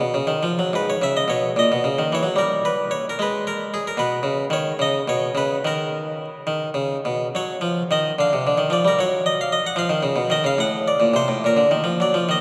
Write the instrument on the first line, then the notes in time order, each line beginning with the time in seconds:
harpsichord
0.00 B2
0.14 C#3
0.27 D#3
0.43 F3
0.59 F#3
0.73 G#2 B4
0.90 C#5
1.02 C#3 E5
1.17 D#5
1.28 B2 C#5
1.56 A#2 D#5
1.72 B2
1.84 C#3
1.99 D#3
2.13 E3 C#5
2.23 F#3
2.36 G3 A#4
2.65 B4
2.91 C#5
3.10 A#4
3.19 G#3 B4
3.47 A#4
3.74 G#4
3.87 A#4
3.97 B2 B4
4.23 C#3
4.50 D#3 C#5
4.79 C#3 D#5
5.08 B2 C#5
5.35 C#3 B4
5.65 D#3 A#4
6.47 D#3
6.74 C#3
7.05 B2
7.35 F#3 C#5
7.61 F3
7.91 D#3 D#5
8.19 D3 F5
8.33 C3
8.47 D3
8.58 D#3
8.70 F3 D5
8.85 G3 A#4
8.99 F#3 C#5
9.26 D#5
9.41 F5
9.53 D#5
9.67 F#5
9.76 F3 F5
9.90 D#3
10.03 C#3
10.16 B2
10.30 D#3 D#5
10.44 C#3 F5
10.58 A2 F#5
10.88 D5
11.00 A#2
11.14 C3 C5
11.28 A2
11.44 A#2 A#4
11.57 D3
11.71 D#3
11.84 F3
12.00 F#3 D5
12.14 F3
12.29 D#3 D#5